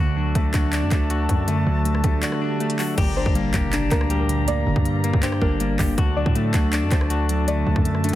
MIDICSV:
0, 0, Header, 1, 9, 480
1, 0, Start_track
1, 0, Key_signature, -2, "minor"
1, 0, Tempo, 375000
1, 1892, Time_signature, 4, 2, 24, 8
1, 10435, End_track
2, 0, Start_track
2, 0, Title_t, "Synth pluck"
2, 0, Program_c, 0, 84
2, 4054, Note_on_c, 0, 72, 85
2, 4962, Note_off_c, 0, 72, 0
2, 5013, Note_on_c, 0, 70, 81
2, 5689, Note_off_c, 0, 70, 0
2, 5733, Note_on_c, 0, 74, 115
2, 6184, Note_off_c, 0, 74, 0
2, 6694, Note_on_c, 0, 72, 102
2, 6921, Note_off_c, 0, 72, 0
2, 6934, Note_on_c, 0, 70, 81
2, 7610, Note_off_c, 0, 70, 0
2, 7892, Note_on_c, 0, 74, 79
2, 8801, Note_off_c, 0, 74, 0
2, 8853, Note_on_c, 0, 72, 75
2, 9529, Note_off_c, 0, 72, 0
2, 9572, Note_on_c, 0, 74, 102
2, 10023, Note_off_c, 0, 74, 0
2, 10435, End_track
3, 0, Start_track
3, 0, Title_t, "Woodwind section"
3, 0, Program_c, 1, 71
3, 0, Note_on_c, 1, 66, 81
3, 0, Note_on_c, 1, 69, 72
3, 0, Note_on_c, 1, 74, 72
3, 0, Note_on_c, 1, 81, 88
3, 3761, Note_off_c, 1, 74, 0
3, 3774, Note_off_c, 1, 66, 0
3, 3774, Note_off_c, 1, 81, 0
3, 3775, Note_off_c, 1, 69, 0
3, 3814, Note_on_c, 1, 70, 73
3, 3815, Note_on_c, 1, 74, 75
3, 3815, Note_on_c, 1, 82, 89
3, 3816, Note_on_c, 1, 67, 83
3, 7437, Note_off_c, 1, 67, 0
3, 7437, Note_off_c, 1, 70, 0
3, 7437, Note_off_c, 1, 82, 0
3, 7654, Note_on_c, 1, 81, 87
3, 7655, Note_on_c, 1, 66, 82
3, 7656, Note_on_c, 1, 69, 75
3, 10435, Note_off_c, 1, 66, 0
3, 10435, Note_off_c, 1, 69, 0
3, 10435, Note_off_c, 1, 74, 0
3, 10435, Note_off_c, 1, 81, 0
3, 10435, End_track
4, 0, Start_track
4, 0, Title_t, "Clean electric guitar"
4, 0, Program_c, 2, 27
4, 0, Note_on_c, 2, 66, 107
4, 211, Note_on_c, 2, 62, 83
4, 450, Note_on_c, 2, 57, 85
4, 676, Note_off_c, 2, 66, 0
4, 691, Note_on_c, 2, 66, 84
4, 916, Note_off_c, 2, 62, 0
4, 932, Note_on_c, 2, 62, 96
4, 1156, Note_off_c, 2, 57, 0
4, 1172, Note_on_c, 2, 57, 78
4, 1397, Note_off_c, 2, 66, 0
4, 1412, Note_on_c, 2, 66, 89
4, 1877, Note_off_c, 2, 57, 0
4, 1892, Note_on_c, 2, 57, 92
4, 2372, Note_off_c, 2, 62, 0
4, 2598, Note_off_c, 2, 57, 0
4, 2614, Note_on_c, 2, 57, 83
4, 2838, Note_off_c, 2, 66, 0
4, 2853, Note_on_c, 2, 66, 101
4, 3092, Note_on_c, 2, 62, 83
4, 3316, Note_off_c, 2, 57, 0
4, 3332, Note_on_c, 2, 57, 93
4, 3558, Note_off_c, 2, 66, 0
4, 3573, Note_on_c, 2, 66, 90
4, 3808, Note_off_c, 2, 66, 0
4, 3812, Note_off_c, 2, 57, 0
4, 3812, Note_off_c, 2, 62, 0
4, 3814, Note_on_c, 2, 67, 107
4, 4054, Note_on_c, 2, 62, 87
4, 4294, Note_on_c, 2, 58, 89
4, 4519, Note_off_c, 2, 67, 0
4, 4534, Note_on_c, 2, 67, 84
4, 4758, Note_off_c, 2, 62, 0
4, 4774, Note_on_c, 2, 62, 106
4, 4998, Note_off_c, 2, 58, 0
4, 5013, Note_on_c, 2, 58, 80
4, 5238, Note_off_c, 2, 67, 0
4, 5253, Note_on_c, 2, 67, 99
4, 5716, Note_off_c, 2, 58, 0
4, 5731, Note_on_c, 2, 58, 92
4, 6213, Note_off_c, 2, 62, 0
4, 6437, Note_off_c, 2, 58, 0
4, 6453, Note_on_c, 2, 58, 83
4, 6677, Note_off_c, 2, 67, 0
4, 6693, Note_on_c, 2, 67, 105
4, 6933, Note_on_c, 2, 62, 78
4, 7158, Note_off_c, 2, 58, 0
4, 7173, Note_on_c, 2, 58, 92
4, 7397, Note_off_c, 2, 67, 0
4, 7412, Note_on_c, 2, 67, 89
4, 7649, Note_off_c, 2, 67, 0
4, 7652, Note_off_c, 2, 62, 0
4, 7653, Note_off_c, 2, 58, 0
4, 7654, Note_on_c, 2, 66, 108
4, 7892, Note_on_c, 2, 62, 84
4, 8132, Note_on_c, 2, 57, 84
4, 8358, Note_off_c, 2, 66, 0
4, 8373, Note_on_c, 2, 66, 84
4, 8597, Note_off_c, 2, 62, 0
4, 8613, Note_on_c, 2, 62, 97
4, 8838, Note_off_c, 2, 57, 0
4, 8854, Note_on_c, 2, 57, 82
4, 9078, Note_off_c, 2, 66, 0
4, 9093, Note_on_c, 2, 66, 91
4, 9558, Note_off_c, 2, 57, 0
4, 9574, Note_on_c, 2, 57, 96
4, 10052, Note_off_c, 2, 62, 0
4, 10277, Note_off_c, 2, 57, 0
4, 10292, Note_on_c, 2, 57, 85
4, 10435, Note_off_c, 2, 57, 0
4, 10435, Note_off_c, 2, 66, 0
4, 10435, End_track
5, 0, Start_track
5, 0, Title_t, "Synth keys"
5, 0, Program_c, 3, 88
5, 0, Note_on_c, 3, 50, 98
5, 179, Control_c, 3, 64, 127
5, 216, Note_on_c, 3, 54, 79
5, 452, Note_on_c, 3, 57, 90
5, 690, Note_on_c, 3, 62, 87
5, 933, Note_on_c, 3, 74, 93
5, 1159, Note_off_c, 3, 62, 0
5, 1172, Note_off_c, 3, 50, 0
5, 1175, Note_on_c, 3, 62, 84
5, 1400, Note_off_c, 3, 57, 0
5, 1414, Note_off_c, 3, 54, 0
5, 1416, Note_on_c, 3, 57, 79
5, 1655, Note_on_c, 3, 54, 76
5, 1888, Note_on_c, 3, 50, 97
5, 2120, Note_off_c, 3, 54, 0
5, 2133, Note_off_c, 3, 74, 0
5, 2135, Note_on_c, 3, 54, 73
5, 2358, Note_off_c, 3, 57, 0
5, 2373, Note_off_c, 3, 62, 0
5, 2373, Note_on_c, 3, 57, 97
5, 2613, Note_on_c, 3, 62, 81
5, 2849, Note_on_c, 3, 74, 95
5, 3078, Note_off_c, 3, 62, 0
5, 3090, Note_off_c, 3, 50, 0
5, 3093, Note_on_c, 3, 62, 85
5, 3315, Note_off_c, 3, 57, 0
5, 3330, Note_on_c, 3, 57, 91
5, 3334, Note_off_c, 3, 54, 0
5, 3572, Note_on_c, 3, 54, 76
5, 3810, Note_off_c, 3, 74, 0
5, 3811, Note_off_c, 3, 57, 0
5, 3812, Note_off_c, 3, 54, 0
5, 3812, Note_off_c, 3, 62, 0
5, 3817, Note_on_c, 3, 46, 96
5, 3829, Control_c, 3, 64, 0
5, 4030, Control_c, 3, 64, 127
5, 4049, Note_on_c, 3, 50, 83
5, 4288, Note_on_c, 3, 55, 91
5, 4532, Note_on_c, 3, 58, 90
5, 4775, Note_on_c, 3, 62, 93
5, 4998, Note_off_c, 3, 58, 0
5, 5013, Note_on_c, 3, 58, 80
5, 5015, Note_off_c, 3, 46, 0
5, 5233, Note_off_c, 3, 55, 0
5, 5248, Note_on_c, 3, 55, 89
5, 5250, Note_off_c, 3, 50, 0
5, 5490, Note_on_c, 3, 50, 77
5, 5736, Note_on_c, 3, 43, 91
5, 5957, Note_off_c, 3, 50, 0
5, 5973, Note_off_c, 3, 62, 0
5, 5973, Note_on_c, 3, 50, 83
5, 6201, Note_off_c, 3, 55, 0
5, 6213, Note_off_c, 3, 58, 0
5, 6217, Note_on_c, 3, 55, 100
5, 6452, Note_on_c, 3, 58, 84
5, 6692, Note_on_c, 3, 62, 93
5, 6917, Note_off_c, 3, 58, 0
5, 6932, Note_on_c, 3, 58, 93
5, 6934, Note_off_c, 3, 43, 0
5, 7155, Note_off_c, 3, 55, 0
5, 7170, Note_on_c, 3, 55, 90
5, 7172, Note_off_c, 3, 50, 0
5, 7412, Note_on_c, 3, 50, 82
5, 7638, Note_off_c, 3, 50, 0
5, 7651, Note_off_c, 3, 55, 0
5, 7652, Note_off_c, 3, 58, 0
5, 7652, Note_off_c, 3, 62, 0
5, 7654, Note_on_c, 3, 50, 105
5, 7670, Control_c, 3, 64, 0
5, 7885, Control_c, 3, 64, 127
5, 7898, Note_on_c, 3, 54, 78
5, 8132, Note_on_c, 3, 57, 94
5, 8373, Note_on_c, 3, 62, 90
5, 8614, Note_on_c, 3, 74, 98
5, 8841, Note_off_c, 3, 62, 0
5, 8853, Note_off_c, 3, 50, 0
5, 8857, Note_on_c, 3, 62, 82
5, 9083, Note_off_c, 3, 57, 0
5, 9095, Note_off_c, 3, 54, 0
5, 9098, Note_on_c, 3, 57, 85
5, 9336, Note_on_c, 3, 54, 79
5, 9571, Note_on_c, 3, 50, 101
5, 9800, Note_off_c, 3, 54, 0
5, 9813, Note_off_c, 3, 74, 0
5, 9816, Note_on_c, 3, 54, 74
5, 10038, Note_off_c, 3, 57, 0
5, 10053, Note_on_c, 3, 57, 96
5, 10054, Note_off_c, 3, 62, 0
5, 10294, Note_on_c, 3, 62, 82
5, 10435, Note_off_c, 3, 50, 0
5, 10435, Note_off_c, 3, 54, 0
5, 10435, Note_off_c, 3, 57, 0
5, 10435, Note_off_c, 3, 62, 0
5, 10435, End_track
6, 0, Start_track
6, 0, Title_t, "808-style bass"
6, 0, Program_c, 4, 38
6, 0, Note_on_c, 4, 38, 111
6, 432, Note_off_c, 4, 38, 0
6, 451, Note_on_c, 4, 38, 107
6, 682, Note_off_c, 4, 38, 0
6, 690, Note_on_c, 4, 38, 107
6, 1052, Note_on_c, 4, 42, 102
6, 1071, Note_off_c, 4, 38, 0
6, 1166, Note_off_c, 4, 42, 0
6, 1171, Note_on_c, 4, 38, 110
6, 1632, Note_off_c, 4, 38, 0
6, 1653, Note_on_c, 4, 42, 108
6, 2113, Note_off_c, 4, 42, 0
6, 2132, Note_on_c, 4, 38, 110
6, 2593, Note_off_c, 4, 38, 0
6, 2611, Note_on_c, 4, 38, 103
6, 2842, Note_off_c, 4, 38, 0
6, 3812, Note_on_c, 4, 31, 113
6, 4157, Note_off_c, 4, 31, 0
6, 4172, Note_on_c, 4, 31, 102
6, 4518, Note_off_c, 4, 31, 0
6, 4531, Note_on_c, 4, 30, 108
6, 4992, Note_off_c, 4, 30, 0
6, 5011, Note_on_c, 4, 38, 105
6, 5933, Note_off_c, 4, 38, 0
6, 5974, Note_on_c, 4, 31, 107
6, 6085, Note_off_c, 4, 31, 0
6, 6093, Note_on_c, 4, 43, 104
6, 6553, Note_off_c, 4, 43, 0
6, 6573, Note_on_c, 4, 43, 103
6, 6918, Note_off_c, 4, 43, 0
6, 6932, Note_on_c, 4, 31, 110
6, 7393, Note_off_c, 4, 31, 0
6, 7413, Note_on_c, 4, 31, 109
6, 7643, Note_off_c, 4, 31, 0
6, 7652, Note_on_c, 4, 38, 114
6, 7998, Note_off_c, 4, 38, 0
6, 8013, Note_on_c, 4, 45, 105
6, 8358, Note_off_c, 4, 45, 0
6, 8372, Note_on_c, 4, 38, 108
6, 8733, Note_on_c, 4, 42, 97
6, 8752, Note_off_c, 4, 38, 0
6, 8844, Note_off_c, 4, 42, 0
6, 8851, Note_on_c, 4, 38, 109
6, 9773, Note_off_c, 4, 38, 0
6, 9812, Note_on_c, 4, 38, 106
6, 9924, Note_off_c, 4, 38, 0
6, 9932, Note_on_c, 4, 42, 102
6, 10393, Note_off_c, 4, 42, 0
6, 10435, End_track
7, 0, Start_track
7, 0, Title_t, "Impact"
7, 0, Program_c, 5, 103
7, 3813, Note_on_c, 5, 60, 89
7, 5732, Note_off_c, 5, 60, 0
7, 10435, End_track
8, 0, Start_track
8, 0, Title_t, "Swell"
8, 0, Program_c, 6, 103
8, 1892, Note_on_c, 6, 60, 86
8, 3812, Note_off_c, 6, 60, 0
8, 10435, End_track
9, 0, Start_track
9, 0, Title_t, "Drums"
9, 451, Note_on_c, 9, 36, 89
9, 451, Note_on_c, 9, 42, 68
9, 579, Note_off_c, 9, 36, 0
9, 579, Note_off_c, 9, 42, 0
9, 688, Note_on_c, 9, 42, 69
9, 690, Note_on_c, 9, 39, 97
9, 691, Note_on_c, 9, 36, 96
9, 816, Note_off_c, 9, 42, 0
9, 818, Note_off_c, 9, 39, 0
9, 819, Note_off_c, 9, 36, 0
9, 931, Note_on_c, 9, 39, 118
9, 933, Note_on_c, 9, 42, 79
9, 1059, Note_off_c, 9, 39, 0
9, 1061, Note_off_c, 9, 42, 0
9, 1168, Note_on_c, 9, 42, 63
9, 1170, Note_on_c, 9, 36, 96
9, 1173, Note_on_c, 9, 39, 67
9, 1296, Note_off_c, 9, 42, 0
9, 1298, Note_off_c, 9, 36, 0
9, 1301, Note_off_c, 9, 39, 0
9, 1408, Note_on_c, 9, 42, 64
9, 1536, Note_off_c, 9, 42, 0
9, 1652, Note_on_c, 9, 36, 85
9, 1653, Note_on_c, 9, 42, 81
9, 1780, Note_off_c, 9, 36, 0
9, 1781, Note_off_c, 9, 42, 0
9, 1891, Note_on_c, 9, 42, 78
9, 2019, Note_off_c, 9, 42, 0
9, 2372, Note_on_c, 9, 42, 68
9, 2492, Note_on_c, 9, 37, 64
9, 2500, Note_off_c, 9, 42, 0
9, 2608, Note_on_c, 9, 42, 68
9, 2611, Note_on_c, 9, 36, 95
9, 2620, Note_off_c, 9, 37, 0
9, 2736, Note_off_c, 9, 42, 0
9, 2739, Note_off_c, 9, 36, 0
9, 2851, Note_on_c, 9, 39, 117
9, 2853, Note_on_c, 9, 42, 81
9, 2972, Note_on_c, 9, 37, 86
9, 2979, Note_off_c, 9, 39, 0
9, 2981, Note_off_c, 9, 42, 0
9, 3100, Note_off_c, 9, 37, 0
9, 3332, Note_on_c, 9, 42, 39
9, 3453, Note_off_c, 9, 42, 0
9, 3453, Note_on_c, 9, 42, 62
9, 3571, Note_on_c, 9, 39, 95
9, 3573, Note_on_c, 9, 46, 80
9, 3581, Note_off_c, 9, 42, 0
9, 3699, Note_off_c, 9, 39, 0
9, 3701, Note_off_c, 9, 46, 0
9, 3810, Note_on_c, 9, 42, 84
9, 3811, Note_on_c, 9, 49, 103
9, 3812, Note_on_c, 9, 36, 126
9, 3938, Note_off_c, 9, 42, 0
9, 3939, Note_off_c, 9, 49, 0
9, 3940, Note_off_c, 9, 36, 0
9, 4172, Note_on_c, 9, 36, 99
9, 4291, Note_on_c, 9, 42, 69
9, 4300, Note_off_c, 9, 36, 0
9, 4419, Note_off_c, 9, 42, 0
9, 4528, Note_on_c, 9, 42, 68
9, 4530, Note_on_c, 9, 39, 96
9, 4531, Note_on_c, 9, 36, 96
9, 4656, Note_off_c, 9, 42, 0
9, 4658, Note_off_c, 9, 39, 0
9, 4659, Note_off_c, 9, 36, 0
9, 4771, Note_on_c, 9, 39, 125
9, 4772, Note_on_c, 9, 42, 79
9, 4899, Note_off_c, 9, 39, 0
9, 4900, Note_off_c, 9, 42, 0
9, 5007, Note_on_c, 9, 42, 65
9, 5011, Note_on_c, 9, 36, 98
9, 5012, Note_on_c, 9, 39, 72
9, 5132, Note_on_c, 9, 37, 93
9, 5135, Note_off_c, 9, 42, 0
9, 5139, Note_off_c, 9, 36, 0
9, 5140, Note_off_c, 9, 39, 0
9, 5249, Note_on_c, 9, 42, 65
9, 5260, Note_off_c, 9, 37, 0
9, 5377, Note_off_c, 9, 42, 0
9, 5494, Note_on_c, 9, 42, 82
9, 5622, Note_off_c, 9, 42, 0
9, 5731, Note_on_c, 9, 42, 86
9, 5859, Note_off_c, 9, 42, 0
9, 6093, Note_on_c, 9, 36, 97
9, 6213, Note_on_c, 9, 42, 69
9, 6221, Note_off_c, 9, 36, 0
9, 6341, Note_off_c, 9, 42, 0
9, 6449, Note_on_c, 9, 42, 69
9, 6573, Note_on_c, 9, 36, 92
9, 6577, Note_off_c, 9, 42, 0
9, 6692, Note_on_c, 9, 39, 120
9, 6694, Note_on_c, 9, 42, 82
9, 6701, Note_off_c, 9, 36, 0
9, 6814, Note_on_c, 9, 37, 91
9, 6820, Note_off_c, 9, 39, 0
9, 6822, Note_off_c, 9, 42, 0
9, 6932, Note_on_c, 9, 36, 101
9, 6942, Note_off_c, 9, 37, 0
9, 7060, Note_off_c, 9, 36, 0
9, 7169, Note_on_c, 9, 42, 64
9, 7297, Note_off_c, 9, 42, 0
9, 7413, Note_on_c, 9, 36, 88
9, 7413, Note_on_c, 9, 39, 93
9, 7415, Note_on_c, 9, 46, 78
9, 7541, Note_off_c, 9, 36, 0
9, 7541, Note_off_c, 9, 39, 0
9, 7543, Note_off_c, 9, 46, 0
9, 7652, Note_on_c, 9, 42, 83
9, 7653, Note_on_c, 9, 36, 123
9, 7780, Note_off_c, 9, 42, 0
9, 7781, Note_off_c, 9, 36, 0
9, 8013, Note_on_c, 9, 36, 99
9, 8133, Note_on_c, 9, 42, 69
9, 8141, Note_off_c, 9, 36, 0
9, 8261, Note_off_c, 9, 42, 0
9, 8369, Note_on_c, 9, 42, 71
9, 8371, Note_on_c, 9, 39, 92
9, 8372, Note_on_c, 9, 36, 95
9, 8497, Note_off_c, 9, 42, 0
9, 8499, Note_off_c, 9, 39, 0
9, 8500, Note_off_c, 9, 36, 0
9, 8612, Note_on_c, 9, 39, 122
9, 8614, Note_on_c, 9, 42, 80
9, 8740, Note_off_c, 9, 39, 0
9, 8742, Note_off_c, 9, 42, 0
9, 8849, Note_on_c, 9, 42, 66
9, 8851, Note_on_c, 9, 36, 98
9, 8854, Note_on_c, 9, 39, 70
9, 8974, Note_on_c, 9, 37, 91
9, 8977, Note_off_c, 9, 42, 0
9, 8979, Note_off_c, 9, 36, 0
9, 8982, Note_off_c, 9, 39, 0
9, 9090, Note_on_c, 9, 42, 64
9, 9102, Note_off_c, 9, 37, 0
9, 9218, Note_off_c, 9, 42, 0
9, 9334, Note_on_c, 9, 42, 81
9, 9462, Note_off_c, 9, 42, 0
9, 9572, Note_on_c, 9, 42, 84
9, 9700, Note_off_c, 9, 42, 0
9, 9932, Note_on_c, 9, 36, 99
9, 10052, Note_on_c, 9, 42, 70
9, 10060, Note_off_c, 9, 36, 0
9, 10172, Note_on_c, 9, 37, 63
9, 10180, Note_off_c, 9, 42, 0
9, 10291, Note_on_c, 9, 42, 71
9, 10300, Note_off_c, 9, 37, 0
9, 10351, Note_off_c, 9, 42, 0
9, 10351, Note_on_c, 9, 42, 61
9, 10435, Note_off_c, 9, 42, 0
9, 10435, End_track
0, 0, End_of_file